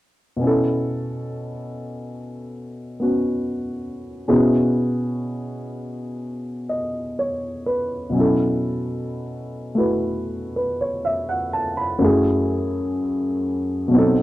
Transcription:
0.37 4.26 B2 soft
0.37 2.98 B3 soft
0.41 3.00 C#4 soft
0.41 4.27 E4 soft
0.47 4.32 A4 soft
3.00 4.27 B3 soft
3.00 4.26 C#4 soft
3.00 4.28 F#4 soft
4.28 8.08 B2 soft
4.28 8.14 B3 soft
4.28 8.13 C#4 soft
4.28 8.14 E4 soft
4.28 8.14 F#4 soft
4.28 8.14 G#4 soft
6.69 7.38 D#5 soft
7.19 7.95 C#5 soft
7.66 8.35 B4 soft
8.10 11.98 B2 soft
8.10 11.99 F#3 soft
8.14 12.00 C#4 soft
8.14 9.75 E4 soft
8.20 12.03 A4 soft
9.75 12.00 A3 soft
9.75 12.01 E4 soft
9.75 12.01 F#4 soft
9.75 10.55 B4 soft
10.56 10.86 B4 soft
10.81 11.14 C#5 soft
11.05 11.49 E5 soft
11.29 11.69 F#5 soft
11.53 11.83 A5 soft
11.77 12.10 B5 soft
11.99 13.93 F#2 soft
11.99 13.89 F#3 soft
11.99 13.94 A3 soft
12.03 13.95 E4 soft
12.03 13.96 G#4 soft
13.88 14.22 B2 soft
13.88 14.22 F#3 soft
13.93 14.22 C4 soft
13.93 14.22 D#4 soft
13.98 14.22 A4 soft

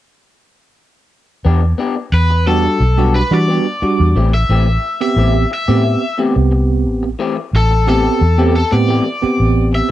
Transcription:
1.45 1.72 E2 medium
1.45 1.62 B3 medium
1.45 1.62 D4 medium
1.45 1.61 G4 medium
1.62 muted clean electric guitar stroke soft
1.78 1.96 B3 medium
1.78 1.96 D4 medium
1.78 1.95 G4 medium
1.96 muted clean electric guitar stroke soft
2.12 2.67 E2 medium
2.12 2.46 B4 medium
2.30 muted clean electric guitar stroke soft
2.46 2.80 G3 medium
2.46 2.64 B3 soft
2.46 2.80 D4 medium
2.46 2.64 D4 medium
2.46 2.81 F#4 medium
2.46 2.63 G4 medium
2.46 3.13 A4 medium
2.64 muted clean electric guitar stroke soft
2.80 3.21 B1 medium
2.80 muted clean electric guitar stroke soft
2.97 3.20 G3 medium
2.97 3.14 B3 soft
2.97 3.20 D4 medium
2.97 3.14 D4 soft
2.97 3.20 F#4 medium
2.97 3.14 G4 medium
3.15 3.32 B4 medium
3.15 muted clean electric guitar stroke soft
3.31 3.58 E3 medium
3.31 3.65 G3 medium
3.31 3.65 D4 medium
3.31 3.65 F#4 medium
3.31 4.31 D5 medium
3.48 3.65 B3 soft
3.48 3.66 D4 medium
3.48 3.65 G4 medium
3.66 muted clean electric guitar stroke soft
3.82 4.16 G3 medium
3.82 4.16 D4 medium
3.82 4.16 F#4 medium
3.82 muted clean electric guitar stroke soft
3.82 muted fingered electric bass stroke soft
4.00 4.13 E2 medium
4.15 4.43 A1 medium
4.15 4.33 E3 medium
4.15 4.33 A3 medium
4.15 4.33 C4 medium
4.15 4.32 G4 medium
4.34 4.99 E5 medium
4.34 muted clean electric guitar stroke soft
4.49 4.77 A1 medium
4.49 4.67 E3 medium
4.49 4.67 A3 medium
4.49 4.67 C4 medium
4.49 4.66 G4 medium
4.67 muted clean electric guitar stroke soft
5.01 5.45 B3 medium
5.01 5.45 C4 medium
5.01 5.45 G4 medium
5.01 5.50 E5 medium
5.01 muted clean electric guitar stroke soft
5.16 5.44 A1 medium
5.16 5.34 E3 soft
5.16 5.34 A3 soft
5.16 5.34 C4 medium
5.16 5.33 G4 medium
5.34 muted clean electric guitar stroke soft
5.51 6.18 E5 medium
5.51 muted clean electric guitar stroke soft
5.68 5.95 A2 medium
5.68 5.83 E3 soft
5.68 5.84 A3 medium
5.68 6.02 B3 medium
5.68 5.84 C4 medium
5.68 6.02 C4 medium
5.68 5.84 G4 medium
5.68 6.02 G4 medium
5.84 muted clean electric guitar stroke soft
6.18 6.35 E3 medium
6.18 6.35 A3 medium
6.18 7.08 B3 medium
6.18 7.08 C4 medium
6.18 6.34 C4 medium
6.18 7.09 G4 medium
6.18 6.34 G4 medium
6.35 6.86 C2 medium
6.35 muted clean electric guitar stroke medium
6.51 muted clean electric guitar stroke soft
6.86 7.13 A1 medium
7.03 muted clean electric guitar stroke soft
7.19 7.37 E3 medium
7.19 7.37 A3 medium
7.19 7.37 C4 medium
7.19 7.36 G4 medium
7.37 muted clean electric guitar stroke soft
7.53 8.08 A1 medium
7.53 7.88 A4 medium
7.71 muted clean electric guitar stroke soft
7.87 8.05 E3 medium
7.87 8.04 A3 soft
7.87 8.21 B3 medium
7.87 8.21 C4 medium
7.87 8.04 C4 medium
7.87 8.21 G4 medium
7.87 8.03 G4 medium
7.87 8.54 A4 medium
8.04 muted clean electric guitar stroke soft
8.21 8.62 E2 medium
8.21 muted clean electric guitar stroke soft
8.38 8.54 E3 soft
8.38 8.54 A3 medium
8.38 8.60 B3 medium
8.38 8.61 C4 medium
8.38 8.54 C4 medium
8.38 8.55 G4 medium
8.38 8.61 G4 medium
8.55 8.72 A4 medium
8.55 muted clean electric guitar stroke soft
8.72 9.00 A2 medium
8.72 9.06 B3 medium
8.72 9.06 C4 medium
8.72 9.06 G4 medium
8.72 9.71 D5 medium
8.88 9.06 E3 medium
8.88 9.05 A3 medium
8.88 9.05 C4 medium
8.88 9.04 G4 medium
9.05 muted clean electric guitar stroke soft
9.22 9.91 B3 medium
9.22 9.91 C4 medium
9.22 9.91 G4 medium
9.22 muted clean electric guitar stroke soft
9.22 muted fingered electric bass stroke soft
9.40 9.80 A1 medium
9.73 9.91 E5 medium
9.73 muted clean electric guitar stroke soft

